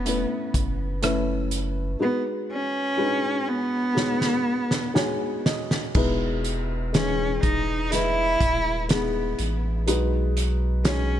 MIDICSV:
0, 0, Header, 1, 5, 480
1, 0, Start_track
1, 0, Tempo, 980392
1, 981, Time_signature, 4, 2, 24, 8
1, 5483, End_track
2, 0, Start_track
2, 0, Title_t, "Felt piano"
2, 0, Program_c, 0, 0
2, 0, Control_c, 0, 64, 127
2, 0, Note_on_c, 0, 52, 63
2, 0, Note_on_c, 0, 57, 69
2, 0, Note_on_c, 0, 61, 62
2, 0, Note_on_c, 0, 64, 57
2, 0, Note_on_c, 0, 71, 70
2, 25, Note_off_c, 0, 57, 0
2, 25, Note_on_c, 0, 57, 66
2, 30, Note_off_c, 0, 61, 0
2, 30, Note_on_c, 0, 61, 56
2, 32, Note_off_c, 0, 64, 0
2, 32, Note_on_c, 0, 64, 53
2, 36, Note_off_c, 0, 71, 0
2, 36, Note_on_c, 0, 71, 74
2, 479, Note_off_c, 0, 57, 0
2, 481, Note_off_c, 0, 61, 0
2, 482, Note_off_c, 0, 64, 0
2, 484, Note_off_c, 0, 71, 0
2, 500, Note_on_c, 0, 57, 82
2, 503, Note_on_c, 0, 61, 77
2, 506, Note_on_c, 0, 64, 71
2, 509, Note_on_c, 0, 71, 81
2, 955, Note_off_c, 0, 57, 0
2, 956, Note_off_c, 0, 61, 0
2, 958, Note_off_c, 0, 64, 0
2, 959, Note_off_c, 0, 71, 0
2, 977, Note_on_c, 0, 56, 67
2, 979, Note_on_c, 0, 63, 57
2, 982, Note_on_c, 0, 66, 57
2, 986, Note_on_c, 0, 71, 76
2, 987, Control_c, 0, 64, 0
2, 991, Note_off_c, 0, 52, 0
2, 1079, Control_c, 0, 64, 127
2, 1432, Note_off_c, 0, 56, 0
2, 1433, Note_off_c, 0, 63, 0
2, 1435, Note_off_c, 0, 66, 0
2, 1436, Note_off_c, 0, 71, 0
2, 1454, Note_on_c, 0, 56, 72
2, 1455, Note_on_c, 0, 62, 55
2, 1459, Note_on_c, 0, 66, 67
2, 1461, Note_on_c, 0, 71, 79
2, 1487, Note_on_c, 0, 63, 63
2, 1488, Note_off_c, 0, 62, 0
2, 1912, Note_off_c, 0, 56, 0
2, 1914, Note_off_c, 0, 66, 0
2, 1915, Note_off_c, 0, 71, 0
2, 1928, Note_off_c, 0, 63, 0
2, 1933, Note_on_c, 0, 56, 66
2, 1937, Note_on_c, 0, 63, 65
2, 1941, Note_on_c, 0, 66, 55
2, 1943, Note_on_c, 0, 73, 63
2, 2398, Note_off_c, 0, 56, 0
2, 2400, Note_off_c, 0, 63, 0
2, 2402, Note_off_c, 0, 66, 0
2, 2403, Note_off_c, 0, 73, 0
2, 2419, Note_on_c, 0, 56, 85
2, 2423, Note_on_c, 0, 63, 76
2, 2424, Note_on_c, 0, 80, 76
2, 2425, Note_on_c, 0, 66, 74
2, 2430, Note_on_c, 0, 73, 95
2, 2653, Note_off_c, 0, 80, 0
2, 2671, Note_on_c, 0, 75, 70
2, 2886, Note_off_c, 0, 56, 0
2, 2888, Note_off_c, 0, 63, 0
2, 2889, Note_off_c, 0, 66, 0
2, 2892, Note_off_c, 0, 73, 0
2, 2897, Note_off_c, 0, 75, 0
2, 2912, Note_on_c, 0, 56, 86
2, 2915, Note_on_c, 0, 63, 73
2, 2916, Note_on_c, 0, 47, 74
2, 2917, Note_on_c, 0, 64, 73
2, 2918, Control_c, 0, 64, 0
2, 2921, Note_on_c, 0, 71, 92
2, 3002, Control_c, 0, 64, 127
2, 3372, Note_off_c, 0, 56, 0
2, 3373, Note_off_c, 0, 63, 0
2, 3375, Note_off_c, 0, 64, 0
2, 3377, Note_off_c, 0, 71, 0
2, 3392, Note_on_c, 0, 56, 67
2, 3395, Note_on_c, 0, 63, 61
2, 3398, Note_on_c, 0, 52, 65
2, 3403, Note_on_c, 0, 68, 74
2, 3620, Note_off_c, 0, 47, 0
2, 3851, Note_off_c, 0, 56, 0
2, 3852, Note_off_c, 0, 63, 0
2, 3854, Note_off_c, 0, 52, 0
2, 3856, Note_off_c, 0, 68, 0
2, 3873, Note_on_c, 0, 56, 57
2, 3877, Note_on_c, 0, 75, 57
2, 3880, Note_on_c, 0, 64, 56
2, 3884, Note_on_c, 0, 71, 75
2, 4330, Note_off_c, 0, 56, 0
2, 4332, Note_off_c, 0, 75, 0
2, 4333, Note_off_c, 0, 64, 0
2, 4336, Note_off_c, 0, 71, 0
2, 4351, Note_on_c, 0, 56, 69
2, 4354, Note_on_c, 0, 63, 64
2, 4358, Note_on_c, 0, 64, 60
2, 4361, Note_on_c, 0, 68, 76
2, 4809, Note_off_c, 0, 56, 0
2, 4810, Note_off_c, 0, 63, 0
2, 4812, Note_off_c, 0, 64, 0
2, 4814, Note_off_c, 0, 68, 0
2, 4831, Note_on_c, 0, 56, 76
2, 4834, Note_on_c, 0, 63, 76
2, 4837, Note_on_c, 0, 66, 76
2, 4840, Control_c, 0, 64, 0
2, 4842, Note_on_c, 0, 71, 92
2, 4940, Control_c, 0, 64, 127
2, 5285, Note_off_c, 0, 56, 0
2, 5286, Note_off_c, 0, 63, 0
2, 5288, Note_off_c, 0, 66, 0
2, 5290, Note_off_c, 0, 71, 0
2, 5308, Note_on_c, 0, 56, 69
2, 5312, Note_on_c, 0, 63, 62
2, 5315, Note_on_c, 0, 66, 61
2, 5319, Note_on_c, 0, 73, 78
2, 5483, Note_off_c, 0, 56, 0
2, 5483, Note_off_c, 0, 63, 0
2, 5483, Note_off_c, 0, 66, 0
2, 5483, Note_off_c, 0, 73, 0
2, 5483, End_track
3, 0, Start_track
3, 0, Title_t, "Cello"
3, 0, Program_c, 1, 42
3, 0, Note_on_c, 1, 59, 70
3, 271, Note_off_c, 1, 59, 0
3, 991, Note_on_c, 1, 59, 86
3, 1089, Note_off_c, 1, 59, 0
3, 1231, Note_on_c, 1, 61, 99
3, 1704, Note_on_c, 1, 59, 96
3, 1711, Note_off_c, 1, 61, 0
3, 2674, Note_off_c, 1, 59, 0
3, 3406, Note_on_c, 1, 61, 88
3, 3626, Note_off_c, 1, 61, 0
3, 3639, Note_on_c, 1, 63, 91
3, 3872, Note_on_c, 1, 64, 118
3, 3880, Note_off_c, 1, 63, 0
3, 4354, Note_off_c, 1, 64, 0
3, 4360, Note_on_c, 1, 59, 75
3, 4698, Note_off_c, 1, 59, 0
3, 5315, Note_on_c, 1, 61, 80
3, 5483, Note_off_c, 1, 61, 0
3, 5483, End_track
4, 0, Start_track
4, 0, Title_t, "Sub bass"
4, 0, Program_c, 2, 38
4, 0, Note_on_c, 2, 28, 81
4, 128, Note_off_c, 2, 28, 0
4, 266, Note_on_c, 2, 30, 78
4, 961, Note_off_c, 2, 30, 0
4, 2914, Note_on_c, 2, 28, 103
4, 3619, Note_off_c, 2, 28, 0
4, 3638, Note_on_c, 2, 28, 89
4, 4096, Note_off_c, 2, 28, 0
4, 4115, Note_on_c, 2, 27, 95
4, 4576, Note_off_c, 2, 27, 0
4, 4599, Note_on_c, 2, 33, 87
4, 4837, Note_on_c, 2, 35, 88
4, 4844, Note_off_c, 2, 33, 0
4, 5483, Note_off_c, 2, 35, 0
4, 5483, End_track
5, 0, Start_track
5, 0, Title_t, "Drums"
5, 29, Note_on_c, 9, 42, 77
5, 32, Note_on_c, 9, 37, 30
5, 78, Note_off_c, 9, 42, 0
5, 81, Note_off_c, 9, 37, 0
5, 265, Note_on_c, 9, 36, 78
5, 267, Note_on_c, 9, 42, 69
5, 314, Note_off_c, 9, 36, 0
5, 316, Note_off_c, 9, 42, 0
5, 502, Note_on_c, 9, 42, 76
5, 508, Note_on_c, 9, 37, 91
5, 551, Note_off_c, 9, 42, 0
5, 557, Note_off_c, 9, 37, 0
5, 740, Note_on_c, 9, 42, 68
5, 789, Note_off_c, 9, 42, 0
5, 1944, Note_on_c, 9, 38, 54
5, 1993, Note_off_c, 9, 38, 0
5, 2063, Note_on_c, 9, 38, 50
5, 2112, Note_off_c, 9, 38, 0
5, 2306, Note_on_c, 9, 38, 58
5, 2355, Note_off_c, 9, 38, 0
5, 2428, Note_on_c, 9, 38, 79
5, 2477, Note_off_c, 9, 38, 0
5, 2673, Note_on_c, 9, 38, 95
5, 2722, Note_off_c, 9, 38, 0
5, 2796, Note_on_c, 9, 38, 84
5, 2844, Note_off_c, 9, 38, 0
5, 2911, Note_on_c, 9, 49, 86
5, 2913, Note_on_c, 9, 36, 113
5, 2960, Note_off_c, 9, 49, 0
5, 2962, Note_off_c, 9, 36, 0
5, 3156, Note_on_c, 9, 42, 66
5, 3205, Note_off_c, 9, 42, 0
5, 3399, Note_on_c, 9, 42, 71
5, 3401, Note_on_c, 9, 38, 96
5, 3448, Note_off_c, 9, 42, 0
5, 3450, Note_off_c, 9, 38, 0
5, 3637, Note_on_c, 9, 42, 71
5, 3638, Note_on_c, 9, 36, 84
5, 3686, Note_off_c, 9, 42, 0
5, 3687, Note_off_c, 9, 36, 0
5, 3878, Note_on_c, 9, 42, 78
5, 3881, Note_on_c, 9, 38, 34
5, 3927, Note_off_c, 9, 42, 0
5, 3929, Note_off_c, 9, 38, 0
5, 4115, Note_on_c, 9, 36, 86
5, 4118, Note_on_c, 9, 42, 74
5, 4164, Note_off_c, 9, 36, 0
5, 4167, Note_off_c, 9, 42, 0
5, 4354, Note_on_c, 9, 42, 80
5, 4360, Note_on_c, 9, 38, 104
5, 4403, Note_off_c, 9, 42, 0
5, 4409, Note_off_c, 9, 38, 0
5, 4595, Note_on_c, 9, 42, 75
5, 4644, Note_off_c, 9, 42, 0
5, 4835, Note_on_c, 9, 42, 94
5, 4884, Note_off_c, 9, 42, 0
5, 5076, Note_on_c, 9, 42, 71
5, 5125, Note_off_c, 9, 42, 0
5, 5311, Note_on_c, 9, 42, 78
5, 5313, Note_on_c, 9, 38, 88
5, 5360, Note_off_c, 9, 42, 0
5, 5362, Note_off_c, 9, 38, 0
5, 5483, End_track
0, 0, End_of_file